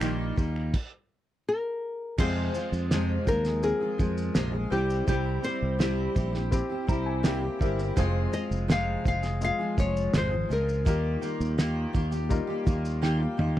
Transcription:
Already playing: G3 D#4 F4 A#4 F5
0.00 A#1 D#3 G3 A#3 D#4 F4, finger snap, shaker
0.36 D#2 G3 A#3 D#4 F4, kick, shaker
0.56 finger snap
0.74 kick, crash
1.49 A#4
2.18 F2 C3 F3 G#3 C4 F4 G#4 C5, kick, crash
2.54 F3 G#3 F4 G#4, shaker
2.72 F2, shaker
2.91 F2 C3 F3 G#3 F4 G#4, snare, shaker
3.26 D#2 F3 G#3 F4 G#4 A#4, kick, shaker
3.45 F3 G#3 F4 G#4, snare, shaker
3.62 C4 F4 G#4 A#4, shaker
3.80 F3 G#3 F4 G#4
3.98 F2 F3 G#3 F4 G#4, kick, shaker
4.18 shaker
4.34 A#1 F2 C3 F3 G#3 F4 G#4, snare, shaker
4.52 F3 G#3 F4 G#4
4.70 C2 G3 C4 E4 G4, shaker
4.90 shaker
5.07 C2 C3 G3 C4 E4 G4, kick, shaker
5.42 G3 C4 E4 G4 C5, shaker
5.62 C2
5.78 C3 G3 C4 E4 G4, snare, shaker
6.15 A#1 G3 C4 E4 G4, kick, shaker
6.33 C4 E4 G4, snare
6.51 C4 E4 G4, kick, shaker
6.70 C4 E4 G4
6.87 C2 G3 C4 E4 G4 A#5, kick, shaker
7.06 G#5
7.23 C3 G3 A#3 C4 E4 G4 G5, snare, shaker
7.42 C4 E4 G4
7.59 G1 G3 C4 E4 G4 A#4 E5, kick, shaker
7.79 E4 C5, shaker
7.96 F1 F2 C3 F3 G#3 C4 F4 G#4, kick, shaker
8.31 F3 G#3 F4 G#4 D#5, shaker
8.51 F1, shaker
8.68 F2 C3 F3 G#3 F4 G#4 F5, snare, shaker
9.05 F1 F3 G#3 F4 G#4 F5, kick, shaker
9.22 F3 G#3 F4 G#4, snare, shaker
9.41 G#3 F4 G#4 F5, shaker
9.58 F3 G#3 F4 G#4
9.77 F1 F3 G#3 F4 G#4 C#5, kick, shaker
9.96 shaker
10.13 G#1 F2 C3 F3 G#3 F4 G#4, snare, shaker
10.17 C5
10.31 F3 G#3 F4 G#4
10.49 C#2 F3 G#3 F4 G#4 A#4, shaker
10.69 shaker
10.85 D#2 D#3 G3 A#3 D#4 F4 G4 A#4, kick, shaker
11.21 D#3 A#3 F4 G4, shaker
11.40 D#2, shaker
11.58 D#3 A#3 F4 G4, snare, shaker
11.93 D#2 D#3 A#3 F4 G4, kick, shaker
12.11 A#3 F4 G4, shaker
12.29 G3 A#3 D#4 F4 A#4, kick, shaker
12.47 A#3 F4 G4
12.65 D#2 D#3 A#3 F4 G4, kick, shaker
12.85 shaker
13.02 D#3 A#3 F4 G4 G5, snare
13.20 A#3 F4 G4 F5
13.37 D#2 D#3 A#3 F4 G4 D#5, mid tom

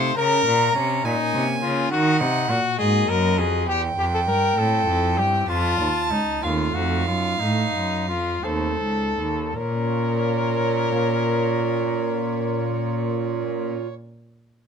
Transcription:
Already playing: C3 A3 D#4 C5 F5
0.17 C#3 A#4 A#5
0.46 A#2
0.75 C3 C#4
1.04 A#2 A#3 C#4 D#4 G#5
1.34 C3
1.62 C#3 F4
1.91 D#3 F#4 F#5
2.20 C3 D#4
2.49 A#2 F#4
2.78 G#2 A#3 F#4 G#4 D#5
3.08 F#2 A#4
3.38 F2 G#4
3.67 E2 G4 G5
3.97 F2 G4
4.14 A4
4.27 G2 A#4
4.56 A2 C4 E4 A4
4.87 F2
5.18 G2 G4
5.48 F2 F4 A5
5.79 D#2
6.11 C#2 D#4
6.42 D#2 A3 C4 D#4 F4 F5
6.75 F2 F#4
7.07 F#2 F4
7.40 A2 A3 D#4
7.74 F#2
8.08 F2 F4
8.44 D#2 A3 C4 D#4 A4 C5
8.80 C#2
9.18 D#2
9.56 A#2 A#4 C#5
9.64 A#3
9.71 C#4
9.78 F4
9.85 C#5

